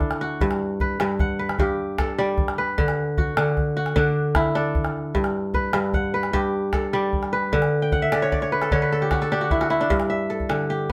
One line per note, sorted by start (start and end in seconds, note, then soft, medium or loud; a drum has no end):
0.00 0.46 D3 medium
0.00 1.50 D4 medium
0.00 1.19 E4 medium
0.00 0.21 F#4 medium
0.00 1.14 A4 medium
0.00 calabash thump medium
0.00 calabash click soft
0.11 calabash click medium
0.21 1.06 F#4 medium
0.41 0.99 G2 medium
0.41 calabash thump medium
0.51 calabash click medium
0.80 1.39 B4 medium
0.80 calabash thump medium
1.00 1.58 G2 medium
1.00 calabash click medium
1.19 2.17 F#5 medium
1.19 calabash thump medium
1.39 2.58 B4 medium
1.49 calabash click medium
1.59 2.83 G2 medium
1.59 3.01 G4 medium
1.59 calabash thump medium
1.98 3.30 A4 medium
1.98 calabash thump medium
1.98 calabash click medium
2.18 2.83 G3 medium
2.18 3.29 D5 medium
2.18 calabash click soft
2.38 calabash thump medium
2.48 calabash click medium
2.58 3.81 B4 medium
2.78 3.36 D3 medium
2.78 calabash thump medium
2.88 calabash click medium
3.18 3.76 F#4 medium
3.18 calabash thump medium
3.37 3.95 D3 medium
3.37 calabash click medium
3.57 calabash thump medium
3.77 5.21 F#4 medium
3.86 calabash click soft
3.96 5.20 D3 medium
3.96 4.55 D4 medium
3.96 calabash thump medium
4.35 5.93 E4 medium
4.35 calabash thump medium
4.35 calabash click medium
4.55 6.23 D4 medium
4.55 5.87 A4 medium
4.55 calabash click soft
4.75 calabash thump medium
4.85 calabash click soft
5.15 5.73 G2 medium
5.15 calabash thump medium
5.24 calabash click soft
5.54 6.14 B4 medium
5.54 calabash thump medium
5.73 6.32 G2 medium
5.73 calabash click medium
5.93 6.91 F#5 medium
5.93 calabash thump medium
6.14 7.32 B4 medium
6.23 calabash click soft
6.33 7.57 G2 medium
6.33 7.75 G4 medium
6.33 calabash thump medium
6.73 8.05 A4 medium
6.73 calabash thump medium
6.73 calabash click medium
6.93 7.57 G3 medium
6.93 8.04 D5 medium
6.93 calabash click soft
7.13 calabash thump medium
7.23 calabash click soft
7.33 8.52 B4 medium
7.52 8.11 D3 medium
7.52 calabash thump medium
7.52 calabash click soft
7.62 calabash click soft
7.82 8.75 G5 medium
7.92 8.89 F#5 medium
7.92 calabash thump medium
8.02 9.06 E5 medium
8.12 8.71 D3 medium
8.12 8.32 D5 medium
8.12 calabash click medium
8.22 8.42 C#5 medium
8.32 8.78 D5 medium
8.32 calabash thump medium
8.41 8.72 C#5 medium
8.41 calabash click soft
8.52 8.82 B4 medium
8.62 8.92 A4 medium
8.62 calabash click soft
8.71 9.95 D3 medium
8.71 9.38 C#5 medium
8.71 calabash thump medium
8.82 10.05 B4 medium
8.92 9.21 A4 medium
9.01 9.31 G4 medium
9.01 calabash click soft
9.11 9.38 F#4 medium
9.11 calabash thump medium
9.11 calabash click medium
9.21 10.29 A4 medium
9.21 calabash click soft
9.32 9.80 D4 medium
9.32 9.67 G4 medium
9.41 9.60 F#4 medium
9.51 9.70 E4 medium
9.51 calabash thump medium
9.51 calabash click soft
9.61 9.96 F#4 medium
9.61 calabash click soft
9.70 10.92 E4 medium
9.70 calabash click soft
9.80 10.92 D4 medium
9.80 calabash click soft
9.90 10.92 G2 medium
9.90 calabash thump medium
9.90 calabash click soft
10.00 calabash click medium
10.10 10.92 E5 medium
10.30 10.92 A4 medium
10.40 calabash thump soft
10.49 10.92 D3 medium
10.49 calabash click medium
10.70 10.92 G4 medium